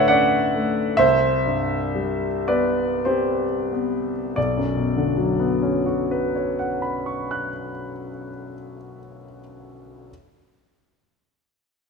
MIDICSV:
0, 0, Header, 1, 2, 480
1, 0, Start_track
1, 0, Key_signature, 2, "minor"
1, 0, Tempo, 882353
1, 521, Time_signature, 3, 2, 24, 8
1, 521, Tempo, 972447
1, 1001, Tempo, 1107011
1, 1481, Tempo, 1315789
1, 1961, Tempo, 1217039
1, 2921, Tempo, 1149425
1, 5056, End_track
2, 0, Start_track
2, 0, Title_t, "Grand piano"
2, 0, Program_c, 0, 0
2, 0, Control_c, 0, 64, 127
2, 0, Note_on_c, 0, 38, 55
2, 0, Note_on_c, 0, 45, 41
2, 0, Note_on_c, 0, 50, 44
2, 0, Note_on_c, 0, 57, 43
2, 0, Note_on_c, 0, 69, 72
2, 0, Note_on_c, 0, 71, 57
2, 0, Note_on_c, 0, 73, 59
2, 0, Note_on_c, 0, 74, 66
2, 0, Note_on_c, 0, 76, 74
2, 0, Note_on_c, 0, 78, 90
2, 43, Note_off_c, 0, 78, 0
2, 43, Note_on_c, 0, 78, 79
2, 48, Note_on_c, 0, 61, 37
2, 51, Note_off_c, 0, 74, 0
2, 51, Note_on_c, 0, 74, 61
2, 188, Note_off_c, 0, 57, 0
2, 296, Note_on_c, 0, 57, 35
2, 427, Note_off_c, 0, 61, 0
2, 505, Note_off_c, 0, 74, 0
2, 509, Note_off_c, 0, 38, 0
2, 523, Note_off_c, 0, 78, 0
2, 527, Note_off_c, 0, 76, 0
2, 527, Note_on_c, 0, 76, 91
2, 530, Note_off_c, 0, 57, 0
2, 532, Note_off_c, 0, 50, 0
2, 532, Control_c, 0, 64, 0
2, 533, Note_off_c, 0, 71, 0
2, 533, Note_off_c, 0, 73, 0
2, 534, Note_off_c, 0, 45, 0
2, 534, Note_off_c, 0, 69, 0
2, 535, Note_on_c, 0, 36, 51
2, 535, Note_on_c, 0, 72, 72
2, 610, Control_c, 0, 64, 127
2, 768, Note_on_c, 0, 43, 34
2, 1010, Note_on_c, 0, 55, 36
2, 1144, Note_off_c, 0, 43, 0
2, 1220, Note_off_c, 0, 72, 0
2, 1234, Note_off_c, 0, 76, 0
2, 1239, Note_on_c, 0, 74, 64
2, 1240, Note_on_c, 0, 71, 49
2, 1245, Note_on_c, 0, 59, 36
2, 1383, Note_off_c, 0, 55, 0
2, 1468, Note_off_c, 0, 71, 0
2, 1484, Note_off_c, 0, 74, 0
2, 1486, Note_on_c, 0, 72, 54
2, 1489, Note_on_c, 0, 60, 34
2, 1491, Note_on_c, 0, 67, 38
2, 1625, Note_off_c, 0, 59, 0
2, 1732, Note_on_c, 0, 59, 33
2, 1872, Note_off_c, 0, 60, 0
2, 1952, Note_off_c, 0, 36, 0
2, 1952, Note_off_c, 0, 67, 0
2, 1964, Note_off_c, 0, 72, 0
2, 1964, Note_on_c, 0, 74, 53
2, 1969, Note_off_c, 0, 59, 0
2, 1969, Note_on_c, 0, 35, 42
2, 1974, Control_c, 0, 64, 0
2, 2046, Note_on_c, 0, 42, 43
2, 2055, Control_c, 0, 64, 127
2, 2124, Note_on_c, 0, 47, 40
2, 2203, Note_on_c, 0, 50, 36
2, 2284, Note_on_c, 0, 54, 38
2, 2372, Note_on_c, 0, 59, 39
2, 2463, Note_on_c, 0, 61, 36
2, 2555, Note_on_c, 0, 66, 37
2, 2655, Note_on_c, 0, 71, 38
2, 2750, Note_on_c, 0, 73, 33
2, 2844, Note_on_c, 0, 78, 32
2, 2935, Note_on_c, 0, 83, 30
2, 3035, Note_on_c, 0, 85, 29
2, 3139, Note_on_c, 0, 90, 32
2, 3216, Note_off_c, 0, 74, 0
2, 3221, Note_off_c, 0, 35, 0
2, 3303, Note_off_c, 0, 42, 0
2, 3385, Note_off_c, 0, 47, 0
2, 3469, Note_off_c, 0, 50, 0
2, 3554, Note_off_c, 0, 54, 0
2, 3647, Note_off_c, 0, 59, 0
2, 3744, Note_off_c, 0, 61, 0
2, 3841, Note_off_c, 0, 66, 0
2, 3947, Note_off_c, 0, 71, 0
2, 4007, Note_off_c, 0, 90, 0
2, 4008, Note_off_c, 0, 85, 0
2, 4010, Note_off_c, 0, 83, 0
2, 4014, Note_off_c, 0, 78, 0
2, 4016, Note_off_c, 0, 73, 0
2, 4304, Control_c, 0, 64, 0
2, 5056, End_track
0, 0, End_of_file